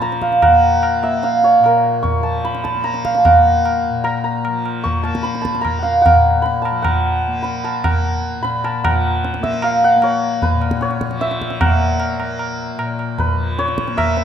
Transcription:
Already playing: tanpura A#2 F3 A#3, santur C#6
0.02 santur A#5, tabla te
0.12 tabla te
0.22 santur F5, tabla ke
0.32 tabla te
0.42 santur F#5, tabla na, tabla ge
0.47 tanpura A#3
0.83 tabla na
1.02 tanpura A#3, santur E5, tabla na
1.23 santur F5, tabla te
1.43 santur C#5, tabla te
1.60 tanpura A#2
1.64 santur A#4, tabla na
2.03 santur C#6, tabla tin, tabla ge
2.20 tanpura F3, santur A5
2.45 santur B5, tabla te
2.55 tabla te
2.64 santur A5, tabla ke
2.75 tanpura A#3, tabla te
2.84 santur A#5, tabla te
2.94 tabla te
3.05 santur F5, tabla ke
3.15 santur A5, tabla te
3.25 santur F#5, tabla na, tabla ge
3.34 tanpura A#3
3.65 tabla na
3.89 tanpura A#2
4.04 santur A#5, tabla na
4.24 santur A#5
4.45 tanpura F3, tabla na
4.66 tabla na
4.84 santur C#6, tabla tin, tabla ge
5.03 tanpura A#3, santur A5, tabla na
5.15 tabla ke
5.23 santur B5, tabla te
5.35 tabla te
5.42 santur A5, tabla ke
5.55 tabla te
5.59 tanpura A#3, santur A#5
5.65 tabla na, tabla ge
5.79 santur F5 F#5
5.85 tabla te
6.02 santur F#5
6.06 tabla na, tabla ge
6.14 tanpura A#2
6.42 santur B5, tabla te
6.62 santur A5, tabla na
6.71 tanpura F3
6.82 santur F#5, tabla na, tabla ge
7.28 tanpura A#3
7.43 santur B5, tabla te
7.64 santur A5, tabla na
7.84 tanpura A#3, santur F#5, tabla na, tabla ge
8.40 tanpura A#2, santur B5
8.45 tabla te
8.64 santur A5, tabla na
8.84 tanpura F3, santur F#5, tabla na, tabla ge
9.24 tabla te
9.34 tabla te
9.40 tanpura A#3, santur E5, tabla ke
9.54 tabla te
9.62 santur F5, tabla na
9.84 santur F#5
9.96 tanpura A#3
10.02 santur C#5, tabla na
10.42 santur B4, tabla tin, tabla ge
10.52 tanpura A#2
10.62 tabla na
10.71 tabla ke
10.81 santur C#5, tabla te
10.91 tabla te
11.01 tabla ke
11.08 tanpura F3, tabla te
11.21 santur E5, tabla te
11.31 tabla te
11.41 tabla ke
11.50 tabla te
11.61 tanpura A#3, santur F#5, tabla na, tabla ge
12.00 tabla na
12.20 tanpura A#3, tabla na
12.39 tabla na
12.78 tanpura A#2, tabla na
12.99 tabla na
13.19 santur B4, tabla tin, tabla ge
13.33 tanpura F3
13.59 santur C#5, tabla te
13.68 tabla te
13.78 tabla ke
13.88 tanpura A#3, tabla te
13.97 santur E5, tabla na, tabla ge
14.17 tabla te

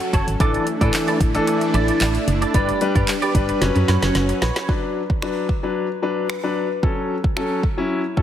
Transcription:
Already playing: supersaw synth F#3 C#4 A4, grand piano F#5
0.00 muted clean electric guitar stroke, closed hi-hat
0.13 fm bass F#1, clean electric guitar F#4 A4 C#5, grand piano A5, kick, closed hi-hat
0.27 fm bass G#1, muted clean electric guitar stroke, closed hi-hat
0.40 fm bass A1, grand piano E3 D4 A4, supersaw synth A3 D4 E4, clean electric guitar E4 A4 D5, kick, closed hi-hat
0.54 closed hi-hat
0.67 muted clean electric guitar stroke, closed hi-hat
0.81 fm bass A2, grand piano E3 D4 A4, clean electric guitar E4 A4 D5, kick, closed hi-hat
0.94 clap, closed hi-hat
1.08 clean electric guitar E4 A4 D5, closed hi-hat
1.20 fm bass A1, kick, closed hi-hat
1.35 grand piano E3 D4 A4, muted clean electric guitar stroke, closed hi-hat
1.47 muted clean electric guitar stroke, closed hi-hat
1.61 muted clean electric guitar stroke, closed hi-hat
1.74 fm bass A1, clean electric guitar E4 A4 D5, closed hi-hat
1.88 clean electric guitar E4 A4 D5, closed hi-hat
2.01 fm bass A1, clean electric guitar E4 A4 D5, clap, closed hi-hat
2.15 muted clean electric guitar stroke, closed hi-hat
2.27 fm bass F#1, muted clean electric guitar stroke, closed hi-hat
2.42 clean electric guitar E4 A4 D5, closed hi-hat
2.54 fm bass G1, grand piano G3 D4 B4, supersaw synth G3 B4, clean electric guitar G4 B4 D5, kick, closed hi-hat
2.69 closed hi-hat
2.81 grand piano G3 D4 B4, muted clean electric guitar stroke, closed hi-hat
2.95 fm bass G2, clean electric guitar G4 B4 D5, kick, closed hi-hat
3.08 muted clean electric guitar stroke, clap, closed hi-hat
3.22 clean electric guitar G4 B4 D5, closed hi-hat
3.35 fm bass G1, grand piano G3 D4 B4, muted clean electric guitar stroke, kick, closed hi-hat
3.49 muted clean electric guitar stroke, closed hi-hat
3.61 fm bass F#1, grand piano F#3 C#4 B4, supersaw synth F#3 C#4, muted clean electric guitar stroke, snare, closed hi-hat
3.76 fm bass F#2, muted clean electric guitar stroke, closed hi-hat
3.88 fm bass F#2, clean electric guitar F#4 B4 C#5, snare, closed hi-hat
4.02 fm bass F#1, clean electric guitar F#4 B4 C#5, snare, closed hi-hat
4.15 fm bass F#1, muted clean electric guitar stroke, snare, closed hi-hat
4.29 muted clean electric guitar stroke, closed hi-hat
4.42 fm bass A#1, clean electric guitar F#4 B4 C#5, snare, closed hi-hat
4.56 clean electric guitar F#4 B4 C#5, snare, closed hi-hat
4.69 grand piano F#3 D4 B4, kick
5.10 kick
5.22 grand piano F#3 D4 B4, finger snap
5.49 kick
5.63 grand piano F#3 D4 B4
6.02 grand piano F#3 D4 B4
6.30 finger snap
6.43 grand piano F#3 D4 B4
6.83 grand piano F#3 C#4 A4, kick
7.24 kick
7.36 grand piano F#3 C#4 A4, finger snap
7.63 kick
7.77 grand piano F#3 C#4 E4
8.17 grand piano F#3 C#4 A4, kick

